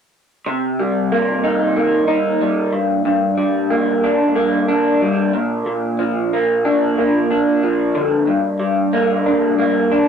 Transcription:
0.46 C3
0.79 G3
1.12 A#3
1.44 D#4
1.76 A#3
2.07 D#4
2.41 G3
2.73 G2
3.05 G2
3.38 G3
3.70 A#3
4.04 D4
4.36 A#3
4.68 D4
5.01 G3
5.33 A#2
5.66 A#2
5.99 F3
6.33 A#3
6.65 D4
6.98 A#3
7.30 D4
7.63 F3
7.95 D3
8.27 G2
8.60 G3
8.93 A#3
9.26 D4
9.58 A#3
9.91 D4

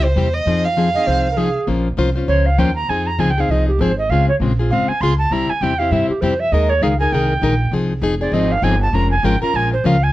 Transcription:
Already playing: C#2
0.04 C5
0.16 E2 C3 G3 C4 E4 G4
0.34 D#5
0.46 F2 F3 C4 D#4 G#4
0.65 F5
0.77 F3 C4 D#4 G#4
0.94 C4 D#4 G#4 D#5
1.07 C2 F3 C4 D#4 G#4 C5
1.31 A#4
1.37 F3 C4 D#4 G#4
1.67 A#1 F3 A#3 C#4 F4 C5
1.97 C2 F3 A#3 C#4 F4 C5
2.16 C#4 F4 C5
2.28 C#2 F3 A#3 C#4 F4 C5 C#5
2.46 F5
2.58 D#2 F3 A#3 C#4 F4 C5 G5
2.76 A#5
2.89 F2 F3 C4 D#4 G#4 G#5
3.07 A#5
3.19 C#2 F3 C4 D#4 G#4 G#5
3.30 G5
3.38 C4 D#4 G#4 F5
3.49 C2 F3 C4 D#4 G#4 D#5
3.68 G4
3.79 G#1 F3 C4 D#4 G#4 C5
3.98 D#5
4.09 C#2 C#3 G#3 C4 F4 G#4 F5
4.29 C#5
4.40 A#1 C#3 G#3 C4 F4 G#4
4.59 C4 F4 G#4
4.70 G#1 C#3 G#3 C4 F4 G#4 F5
4.88 G#5, muted upright bass stroke
5.00 C#2 C#3 G#3 C4 F4 G#4 C6
5.18 A5
5.31 C2 C3 G3 C4 E4 G4 A#5
5.49 G#5, muted upright bass stroke
5.61 E2 C3 G3 C4 E4 G4 G5
5.79 C4 E4 G4 F5
5.91 G2 C3 G3 C4 E4 G4 E5
6.09 G4, muted upright bass stroke
6.21 F2 C3 G3 C4 E4 G4 C5
6.40 E5
6.52 D#2 D#3 G#3 D#4 G#4 A#4 D#5
6.70 C#5
6.82 C#2 D#3 G#3 D#4 G#4 A#4 F5
7.00 D#4 G#4 A#4 G#5
7.12 C2 D#3 G#3 D#4 G#4 A#4 G5
7.42 A#1 D#3 G#3 D#4 G#4 A#4
7.72 C2 F3 C4 D#4 G#4
8.02 F1 F3 C4 D#4 G#4
8.21 C4 D#4 G#4 D5
8.32 G#1 F3 C4 D#4 G#4 D#5
8.52 F5
8.62 G1 F3 C4 D#4 G#4 G#5
8.82 A5
8.93 F1 F3 G#3 C#4 F4 A#4 A#5
9.11 G#5
9.23 G#1 F3 G#3 C#4 F4 A#4 G5
9.42 C#4 F4 A#4 A#5, muted upright bass stroke
9.54 A#1 F3 G#3 C#4 F4 A#4 G#5
9.73 C5
9.84 C#2 F3 G#3 C#4 F4 A#4 F5
10.03 G#5

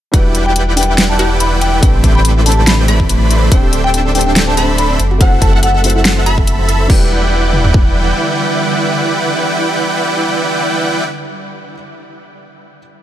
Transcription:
0.12 E1 D3 G3 D4 E4 F#4 B4 D5 F#5 G5, kick, closed hi-hat
0.16 B4
0.35 closed hi-hat
0.46 E4 G4 B4 D5 F#5 G5
0.56 closed hi-hat
0.75 G3 D4 E4 B4 G5, open hi-hat
0.83 closed hi-hat
0.88 G5
0.98 snare, closed hi-hat
1.10 A5
1.19 E4 G4 B4 D5 F#5 G5, closed hi-hat
1.40 B5, closed hi-hat
1.61 G5, closed hi-hat
1.73 G5
1.81 A1 A3 C4 D4 G4 B4 G5, kick, closed hi-hat
2.04 kick, closed hi-hat
2.15 A3 E4 B4 C5 D5 G5 B5
2.25 closed hi-hat
2.44 A3 C4 D4 G4 A5, open hi-hat
2.48 B5, closed hi-hat
2.57 A5
2.67 B5, snare, closed hi-hat
2.88 A3 E4 B4 C5 D5 B5, closed hi-hat
3.00 kick
3.09 closed hi-hat
3.31 closed hi-hat
3.50 D1 A3 C4 D4 G4 A4 E5 G5, kick, closed hi-hat
3.54 C5
3.63 G4
3.73 A4, closed hi-hat
3.84 D4 A4 C5 E5 G5
3.94 A4, closed hi-hat
4.05 A4
4.13 A3 C4 D4 G4 A4 G5, open hi-hat
4.17 C5, closed hi-hat
4.26 D4 G5
4.36 A4, snare, closed hi-hat
4.48 C5 A5
4.57 D4 A4 C5 E5 A5 B5, closed hi-hat
4.69 C5
4.78 A4 B5, closed hi-hat
4.90 D5
4.99 F#1 E3 A3 F#4 A4, closed hi-hat
5.11 F#4
5.18 A3 C4 E4 F#4 A4 C5 E5 F#5, kick, closed hi-hat
5.32 F#4
5.42 A4 A5, kick, closed hi-hat
5.53 A4 C5 E5 F#5
5.63 A4 F#5, closed hi-hat
5.74 A4
5.82 A3 C4 E4 F#4 A4, open hi-hat
5.86 C5, closed hi-hat
5.95 E4
6.05 A4, snare, closed hi-hat
6.17 C5
6.26 F#4 A4 E5 B5, closed hi-hat
6.38 E5, kick
6.47 E5, closed hi-hat
6.59 C5
6.69 A4, closed hi-hat
6.80 C5
6.87 E1 D3 G3 D4 E4 G4 B4 D5 F#5 G5, kick, crash
6.93 B4
7.53 mid tom
7.65 floor tom
7.74 kick

